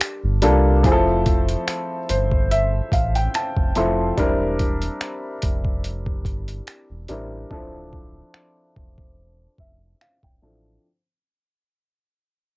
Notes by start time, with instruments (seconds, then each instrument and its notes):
0.01 finger snap, closed hi-hat
0.24 sub bass G1
0.42 sub bass C2, grand piano G3 A#3 D4 F4 A4, closed hi-hat
0.83 sub bass F1, grand piano F3 A3 C4 E4 G#4, kick, closed hi-hat
0.92 grand piano A4
1.26 kick, closed hi-hat
1.49 closed hi-hat
1.68 finger snap, closed hi-hat
2.09 sub bass G1, grand piano C5, closed hi-hat
2.31 kick
2.51 grand piano E5, closed hi-hat
2.92 sub bass A1, grand piano F5, kick, closed hi-hat
3.15 grand piano G5, closed hi-hat
3.34 grand piano A5, finger snap, closed hi-hat
3.57 sub bass F1, kick
3.75 sub bass F1, grand piano F3 A3 C4 E4 A4 C6, closed hi-hat
4.18 sub bass E1, grand piano G3 C4 D4 E4 A#4, kick, closed hi-hat
4.59 kick, closed hi-hat
4.82 closed hi-hat
5.01 finger snap, closed hi-hat
5.42 sub bass F1, kick, closed hi-hat
5.65 kick
5.84 closed hi-hat
6.06 kick
6.25 sub bass G1, kick, closed hi-hat
6.48 closed hi-hat
6.67 finger snap, closed hi-hat
6.90 sub bass E1
7.08 sub bass A1, grand piano G3 C4 D4 E4 A#4, closed hi-hat
7.50 sub bass D1, grand piano F3 C4 D4 E4 A4, kick
7.93 kick
8.34 finger snap
8.76 sub bass E1, kick
8.98 kick
9.58 sub bass F1, grand piano E5, kick
10.01 grand piano F5, finger snap
10.23 sub bass D1, grand piano G5, kick
10.42 sub bass A1, grand piano F3 C4 D4 E4 A4 A5